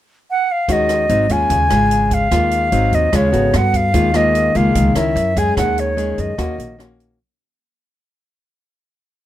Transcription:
0.31 0.53 F#5 loud
0.52 0.74 F5 medium
0.68 1.06 D#2 medium
0.68 1.08 D#3 medium
0.68 1.08 G#3 soft
0.68 1.08 C#4 medium
0.68 1.08 F#4 medium
0.68 1.33 D#5 medium
0.68 kick soft
0.68 closed hi-hat medium
0.89 cross-stick soft
0.89 closed hi-hat soft
1.09 1.28 G#1 medium
1.09 1.26 F#3 medium
1.09 1.27 C4 medium
1.09 1.27 D#4 medium
1.09 closed hi-hat soft
1.29 1.49 D#2 medium
1.29 1.68 G#3 medium
1.29 1.68 C#4 medium
1.29 1.68 F4 medium
1.29 2.15 G#5 loud
1.29 closed hi-hat soft
1.50 1.69 D#2 medium
1.50 2.29 C#3 medium
1.50 kick medium
1.50 closed hi-hat medium
1.70 2.28 G#1 medium
1.70 2.28 G#3 medium
1.70 2.28 C#4 soft
1.70 2.29 F4 soft
1.70 cross-stick medium
1.70 closed hi-hat soft
1.91 closed hi-hat soft
2.11 2.96 F5 medium
2.11 kick medium
2.11 closed hi-hat soft
2.31 2.69 D#2 medium
2.31 2.70 D#3 soft
2.31 2.69 G#3 medium
2.31 2.69 A#3 medium
2.31 2.69 F4 medium
2.31 kick medium
2.31 cross-stick medium
2.31 closed hi-hat medium
2.51 closed hi-hat soft
2.72 2.91 G#1 medium
2.72 3.11 F#3 medium
2.72 3.12 C4 medium
2.72 3.12 D#4 medium
2.72 closed hi-hat soft
2.93 3.12 D#2 medium
2.93 3.17 D#5 medium
2.93 closed hi-hat soft
3.12 3.32 D#2 medium
3.12 3.52 C#3 medium
3.12 3.30 G#3 medium
3.12 3.30 C#4 soft
3.12 3.30 F4 medium
3.12 3.58 C#5 medium
3.12 kick medium
3.12 cross-stick medium
3.12 closed hi-hat medium
3.32 3.52 G#1 medium
3.32 3.91 B3 medium
3.32 3.91 F#4 soft
3.32 3.91 A4 soft
3.32 closed hi-hat soft
3.54 3.92 G2 loud
3.54 3.78 F#5 medium
3.54 cross-stick medium
3.54 closed hi-hat soft
3.74 4.18 F5 loud
3.74 kick medium
3.74 closed hi-hat soft
3.94 4.52 D#2 medium
3.94 4.74 D#3 medium
3.94 4.12 G#3 medium
3.94 4.12 A#3 soft
3.94 4.12 F4 medium
3.94 kick medium
3.94 closed hi-hat medium
4.14 4.52 G#3 soft
4.14 4.52 A#3 medium
4.14 4.52 F4 medium
4.14 4.58 D#5 medium
4.14 cross-stick medium
4.14 closed hi-hat soft
4.35 closed hi-hat soft
4.55 4.74 C#2 medium
4.55 4.93 G#3 medium
4.55 4.93 A#3 medium
4.55 4.93 F4 medium
4.55 4.99 F5 medium
4.55 closed hi-hat soft
4.75 4.95 C#2 medium
4.75 5.15 D#3 medium
4.75 kick medium
4.75 closed hi-hat medium
4.95 5.15 C#2 medium
4.95 5.33 C#4 medium
4.95 5.34 E4 soft
4.95 5.34 A#4 soft
4.95 5.40 E5 medium
4.95 cross-stick medium
4.95 closed hi-hat soft
5.16 5.54 F#2 loud
5.16 closed hi-hat soft
5.37 5.95 G#3 medium
5.37 5.95 C#4 medium
5.37 5.95 G#4 medium
5.37 5.57 G#5 medium
5.37 kick medium
5.37 closed hi-hat soft
5.57 6.14 D#2 loud
5.57 6.37 D#3 medium
5.57 5.81 F#5 medium
5.57 kick medium
5.57 cross-stick medium
5.57 closed hi-hat medium
5.78 6.21 C#5 medium
5.78 closed hi-hat soft
5.97 6.35 G#3 medium
5.97 6.35 C#4 medium
5.97 6.36 G#4 medium
5.97 closed hi-hat soft
6.18 6.37 F#2 medium
6.18 6.80 D#5 medium
6.18 kick soft
6.18 closed hi-hat soft
6.38 6.58 D#2 medium
6.38 7.18 D#3 medium
6.38 6.76 A#3 medium
6.38 6.76 C#4 soft
6.38 6.76 F#4 medium
6.38 kick medium
6.38 cross-stick medium
6.38 closed hi-hat medium
6.59 7.16 A#1 medium
6.59 closed hi-hat soft
6.79 7.18 A#3 medium
6.79 7.19 C#4 soft
6.79 7.19 F#4 medium
6.79 cross-stick medium
6.79 closed hi-hat soft
7.00 closed hi-hat soft

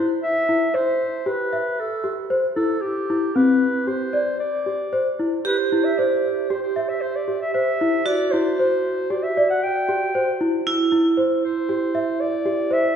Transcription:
0.00 0.12 E4 medium
0.00 0.10 C5 medium
0.23 0.76 E5 medium
0.49 0.63 E4 medium
0.74 1.02 C5 medium
0.74 1.29 C5 medium
1.26 1.40 G4 medium
1.26 1.81 B4 medium
1.53 1.80 E5 medium
1.79 2.18 A4 medium
2.04 2.18 G4 medium
2.30 2.44 C5 medium
2.56 2.71 E4 medium
2.56 2.83 A4 medium
2.81 3.37 G4 medium
3.10 3.24 E4 medium
3.35 3.63 C4 medium
3.35 3.89 B4 medium
3.87 4.01 G4 medium
3.87 4.39 C5 medium
4.13 4.41 D5 medium
4.40 5.15 D5 medium
4.66 4.80 G4 medium
4.93 5.07 C5 medium
5.19 5.33 E4 medium
5.45 8.14 G4 medium
5.45 5.60 B4 medium
5.58 5.86 C5 medium
5.72 5.86 E4 medium
5.84 6.00 E5 medium
5.98 6.26 C5 medium
5.98 6.51 D5 medium
6.50 6.64 G4 medium
6.50 6.62 C5 medium
6.63 6.90 C5 medium
6.76 7.04 E5 medium
6.89 7.03 E5 medium
7.01 7.17 C5 medium
7.16 7.41 D5 medium
7.28 7.42 G4 medium
7.42 7.53 E5 medium
7.54 7.68 C5 medium
7.54 8.08 E5 medium
7.81 7.95 E4 medium
8.06 10.73 F#4 medium
8.06 8.33 D5 medium
8.31 8.47 E4 medium
8.31 9.12 C5 medium
8.59 8.87 C5 medium
9.10 9.24 G4 medium
9.10 9.25 D5 medium
9.24 9.49 E5 medium
9.37 9.65 D5 medium
9.50 9.65 F#5 medium
9.63 10.40 G5 medium
9.89 10.02 G4 medium
10.15 10.29 C5 medium
10.41 10.54 E4 medium
10.67 12.96 E4 medium
10.92 11.06 E4 medium
11.17 11.45 C5 medium
11.44 12.22 C5 medium
11.69 11.83 G4 medium
11.95 12.22 E5 medium
12.20 12.74 D5 medium
12.46 12.59 G4 medium
12.71 12.85 C5 medium
12.71 12.96 E5 medium

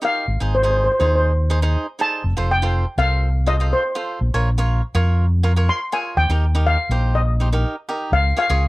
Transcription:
0.02 0.25 D#4 medium
0.02 0.25 G4 medium
0.02 0.26 A#4 medium
0.02 0.55 F5 loud
0.28 0.38 G#1 medium
0.40 0.86 G#1 medium
0.40 0.55 D#4 medium
0.40 0.55 G#4 medium
0.40 0.56 C5 medium
0.55 0.61 C5 medium
0.63 0.87 D#4 medium
0.63 0.87 G#4 medium
0.63 0.69 C5 medium
0.63 0.87 C5 medium
0.70 0.76 C5 medium
0.77 0.83 C5 soft
0.84 0.90 C5 medium
0.92 0.98 C5 soft
1.00 1.75 D#2 medium
1.00 1.31 D#4 medium
1.00 1.31 G#4 medium
1.00 1.05 C5 medium
1.00 1.31 C5 medium
1.07 1.13 C5 soft
1.15 1.21 C5 medium
1.50 1.58 D#4 medium
1.50 1.58 G#4 medium
1.50 1.59 C5 medium
1.62 1.85 D#4 medium
1.62 1.85 G#4 medium
1.62 1.85 C5 medium
1.99 2.22 D#4 medium
1.99 2.22 G#4 medium
1.99 2.22 C5 medium
1.99 2.47 A5 loud
2.24 2.34 F1 medium
2.37 2.83 F1 medium
2.37 2.51 F4 medium
2.37 2.52 A4 medium
2.37 2.52 C5 medium
2.51 2.96 G5 loud
2.62 2.84 F4 medium
2.62 2.84 A4 medium
2.62 2.85 C5 medium
2.98 3.72 C2 loud
2.98 3.28 F4 medium
2.98 3.28 A4 medium
2.98 3.28 C5 medium
2.98 3.49 F5 medium
3.46 3.55 F4 medium
3.46 3.55 A4 medium
3.46 3.55 C5 medium
3.46 3.73 D#5 medium
3.60 3.82 F4 medium
3.60 3.82 A4 medium
3.60 3.83 C5 medium
3.73 4.91 C5 medium
3.95 4.18 F4 medium
3.95 4.18 A4 medium
3.95 4.19 C5 medium
4.21 4.31 A#1 medium
4.34 4.79 A#1 medium
4.34 4.48 F4 medium
4.34 4.48 A#4 medium
4.34 4.48 C#5 loud
4.58 4.80 F4 medium
4.58 4.80 A#4 medium
4.58 4.81 C#5 loud
4.95 5.68 F2 medium
4.95 5.24 F4 medium
4.95 5.25 A#4 medium
4.95 5.25 C#5 medium
5.43 5.51 F4 medium
5.43 5.52 A#4 medium
5.43 5.52 C#5 medium
5.56 5.79 F4 medium
5.56 5.79 A#4 medium
5.56 5.79 C#5 medium
5.69 5.94 C6 loud
5.92 6.15 F4 medium
5.92 6.15 A#4 medium
5.92 6.15 C#5 medium
5.92 6.04 G#5 medium
6.17 6.27 D#2 medium
6.17 6.68 G5 loud
6.29 6.75 D#2 medium
6.29 6.44 D#4 medium
6.29 6.44 G4 medium
6.29 6.45 A#4 medium
6.55 6.77 D#4 medium
6.55 6.77 G4 medium
6.55 6.77 A#4 medium
6.67 7.17 F5 medium
6.89 7.63 A#1 medium
6.89 7.20 D#4 medium
6.89 7.20 G4 medium
6.89 7.21 C5 medium
7.15 7.61 D#5 medium
7.40 7.48 D#4 medium
7.40 7.48 G4 soft
7.40 7.48 C5 medium
7.52 7.74 D#4 medium
7.52 7.75 G4 medium
7.52 7.75 A#4 medium
7.89 8.11 D#4 medium
7.89 8.11 G4 medium
7.89 8.11 A#4 medium
8.12 8.31 C#2 loud
8.12 8.37 F5 loud
8.36 8.45 F4 medium
8.36 8.45 G#4 medium
8.36 8.45 C#5 medium
8.36 8.68 F5 loud
8.49 8.68 C#2 medium
8.49 8.64 F4 medium
8.49 8.64 G#4 medium
8.49 8.64 C#5 medium

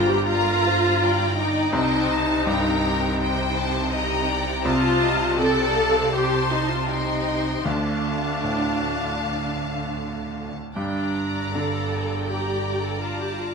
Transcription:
0.00 1.69 G1 medium
0.00 1.70 G2 medium
0.00 1.74 D3 soft
0.00 0.27 C5 medium
0.00 0.22 G5 medium
0.00 0.25 A#5 medium
0.09 0.27 G4 medium
0.26 1.34 F4 medium
0.26 0.62 A#4 medium
0.26 1.70 A#5 medium
0.26 1.00 A#5 medium
0.65 1.01 C5 medium
1.02 1.38 D5 medium
1.02 1.74 G5 medium
1.37 4.29 D#4 medium
1.37 1.74 D5 medium
1.73 4.61 C2 medium
1.73 7.61 C2 medium
1.73 7.61 C3 medium
1.73 2.48 C5 medium
1.73 2.10 G5 medium
1.73 2.45 A5 medium
2.12 2.47 A5 medium
2.47 4.65 G2 soft
2.47 2.83 A#4 medium
2.47 3.18 G5 medium
2.47 3.19 A#5 medium
2.84 3.19 A#4 medium
3.19 3.92 C5 medium
3.19 3.55 G5 medium
3.19 3.91 G5 medium
3.56 3.93 A5 medium
3.92 4.29 D#5 medium
3.92 4.64 G5 medium
3.92 4.64 A#5 medium
4.29 4.65 D5 medium
4.64 7.61 C2 medium
4.64 5.34 F4 medium
4.64 5.01 C5 medium
4.64 5.38 A5 medium
4.64 5.39 A5 medium
5.02 5.38 D#5 medium
5.38 7.65 C3 soft
5.38 6.12 A4 medium
5.38 6.12 D5 medium
5.38 5.75 G5 medium
5.38 6.12 A5 medium
5.75 6.12 F5 medium
6.12 6.49 G4 medium
6.12 6.87 C5 medium
6.12 6.88 A5 medium
6.12 6.88 C6 medium
6.50 6.69 D#4 medium
6.70 6.88 F4 medium
6.88 7.65 D#4 medium
6.88 7.64 C5 soft
6.88 7.65 G5 medium
6.88 7.65 C6 soft
7.65 10.71 D2 soft
7.65 10.51 D2 medium
7.65 10.51 D3 soft
7.65 10.37 D4 medium
7.65 10.55 F5 medium
7.65 10.56 A5 soft
8.44 10.76 A2 soft
10.75 13.54 G1 soft
10.75 13.54 G2 soft
10.75 11.51 D4 medium
10.75 12.25 D5 soft
10.75 11.13 G5 soft
10.75 12.25 A#5 soft
11.15 11.55 A#5 soft
11.55 13.54 D3 soft
11.55 12.29 A4 medium
11.55 11.93 F5 soft
11.92 13.01 G5 soft
12.29 12.83 G4 medium
12.29 13.54 D5 soft
12.29 12.99 A#5 soft
12.83 13.02 A4 medium
13.00 13.19 F4 medium
13.00 13.54 A5 soft
13.00 13.54 A#5 soft
13.20 13.38 G4 soft
13.38 13.54 F4 medium

